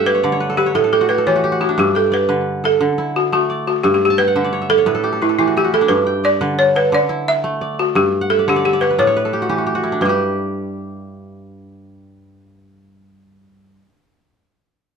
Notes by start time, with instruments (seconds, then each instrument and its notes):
Already playing: kora G2 A3 E4 E5 F#5 G5 A5
0.06 balafon B4, kora D5
0.15 kora C#5
0.23 kora D3 D5
0.32 kora C#5
0.40 kora B4
0.50 kora A4
0.57 balafon G4, kora B4
0.66 kora C#5
0.75 kora A2 B4, balafon A4
0.84 kora A4
0.93 kora G4, balafon A4
1.01 kora F#4
1.09 kora G4, balafon B4
1.18 kora A4
1.26 kora E3 G4, balafon C#5
1.36 kora F#4
1.44 kora G4
1.52 kora F#4
1.60 kora E4, balafon F#4
1.69 kora D4
1.78 kora G2, balafon G4
1.95 balafon A4, kora G5
2.12 balafon B4, kora D5
2.29 kora D3 B4
2.64 kora A4, balafon A4
2.81 kora D3
2.98 kora E4
3.16 balafon F#4
3.32 kora A3, balafon F#4
3.50 kora D5
3.67 balafon F#4
3.83 kora G2, balafon G4
3.94 balafon G4
4.05 balafon G4
4.10 kora A5
4.18 balafon B4, kora G5
4.28 kora F#5
4.36 kora D3 E5
4.44 kora D5
4.53 kora C#5
4.62 kora E5
4.70 balafon A4, kora D5
4.78 kora C#5
4.86 kora A2 B4
4.95 kora A4
5.04 kora G4
5.12 kora A4
5.22 balafon E4, kora B4
5.29 kora A4
5.38 kora E3 G4, balafon E4
5.47 kora F#4
5.57 kora G4, balafon G4
5.64 kora F#4
5.74 kora E4, balafon A4
5.81 kora D4
5.88 kora G2, balafon B4
6.07 kora G5
6.24 kora D5, balafon D5
6.41 kora D3 B4
6.59 balafon C#5
6.76 kora A4, balafon B4
6.92 kora D3, balafon D5
7.09 kora E4
7.28 balafon E5
7.44 kora A3
7.61 kora D5
7.79 balafon F#4
7.95 kora G2, balafon G4
8.21 kora F#5
8.30 balafon A4, kora E5
8.39 kora D5
8.48 kora D3 C#5, balafon G4
8.56 kora D5
8.65 balafon G4, kora E5
8.73 kora D5
8.81 balafon B4, kora C#5
8.90 kora B4
8.98 kora A2 D5, balafon C#5
9.07 kora C#5
9.16 kora B4
9.25 kora A4
9.33 kora G4
9.42 kora F#4
9.49 kora E3 G4
9.58 kora F#4
9.66 kora G4
9.75 kora F#4
9.84 kora E4
9.92 kora D4
10.01 kora G2, balafon B4
10.05 kora G3 G4